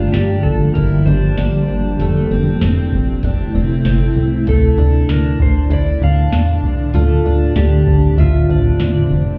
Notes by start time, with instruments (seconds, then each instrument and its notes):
Already playing: ambient pad D3 F3 G3 A#3 G4, twelve-string acoustic guitar D4, electric slide guitar F4
0.12 analog synth bass G1, twelve-string acoustic guitar D4, electric slide guitar G4, snare, closed hi-hat
0.43 analog synth bass G1, electric slide guitar A4, kick
0.74 analog synth bass G1, twelve-string acoustic guitar E4, electric slide guitar A#4, kick, closed hi-hat
1.06 analog synth bass G1, twelve-string acoustic guitar D4, electric slide guitar C5
1.38 analog synth bass A1, twelve-string acoustic guitar D4, snare, closed hi-hat
1.68 analog synth bass G1
1.99 analog synth bass F1, ambient pad C3 A3 E4, twelve-string acoustic guitar A3, closed hi-hat
2.31 analog synth bass F1, twelve-string acoustic guitar C4
2.61 analog synth bass F1, twelve-string acoustic guitar C4, snare, closed hi-hat
2.92 analog synth bass F1, kick
3.23 analog synth bass F1, twelve-string acoustic guitar D4, kick, closed hi-hat
3.54 analog synth bass F1, twelve-string acoustic guitar C4
3.85 analog synth bass G1, twelve-string acoustic guitar C4, snare, closed hi-hat
4.16 analog synth bass C2
4.47 analog synth bass D2, ambient pad A2 D3 D4, twelve-string acoustic guitar A3, electric slide guitar A4, kick, closed hi-hat
4.78 analog synth bass D2, twelve-string acoustic guitar D4
5.09 analog synth bass D2, twelve-string acoustic guitar D4, electric slide guitar A#4, snare, closed hi-hat
5.40 analog synth bass D2, electric slide guitar C5, kick
5.70 analog synth bass D2, twelve-string acoustic guitar E4, electric slide guitar D5, kick, closed hi-hat
6.01 analog synth bass D2, twelve-string acoustic guitar D4, electric slide guitar F5
6.32 analog synth bass E2, twelve-string acoustic guitar D4, snare, closed hi-hat
6.63 analog synth bass C2
6.94 analog synth bass D2, twelve-string acoustic guitar A3, ambient pad C4, electric slide guitar F4, closed hi-hat
7.25 analog synth bass D2, twelve-string acoustic guitar D4
7.56 analog synth bass D2, twelve-string acoustic guitar D4, electric slide guitar G4, snare, closed hi-hat
7.87 analog synth bass D2, kick
8.18 analog synth bass D2, electric slide guitar F4, twelve-string acoustic guitar E5, kick, closed hi-hat
8.49 analog synth bass D2, twelve-string acoustic guitar D4, kick
8.79 analog synth bass E2, twelve-string acoustic guitar D4, snare, closed hi-hat
9.10 analog synth bass F1